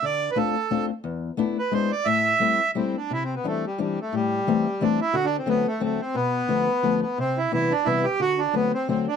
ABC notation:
X:1
M:3/4
L:1/16
Q:"Swing" 1/4=177
K:Am
V:1 name="Accordion"
d3 B A6 z2 | z6 B2 c2 d2 | e8 C2 D2 | [K:C] (3E2 C2 B,2 A,2 G,2 G,2 A,2 |
G,8 D2 E2 | (3^F2 D2 C2 B,2 A,2 A,2 C2 | B,8- B,2 B,2 | C2 E2 E2 D2 E2 G2 |
^F2 D2 B,2 C2 C2 D2 |]
V:2 name="Steel-string acoustic guitar"
D,4 [A,CDF]2 z2 [A,CDF]2 z2 | E,,4 [A,B,DE]2 z2 [^G,B,DE]2 z2 | A,,4 [G,A,CE]2 z2 [G,A,CE]2 z2 | [K:C] C,4 [E,G,CD]2 z2 [E,G,CD]2 z2 |
A,,4 [E,G,A,C]2 z2 [E,G,A,C]2 z2 | D,4 [D,^F,A,C]2 z2 [D,F,A,C]2 z2 | B,,4 [D,F,A,B,]2 z2 [D,F,A,B,]2 z2 | C,4 [C,E,G,B,]2 z2 [C,E,G,B,]2 z2 |
D,4 [D,^F,A,C]2 z2 [D,F,A,C]2 z2 |]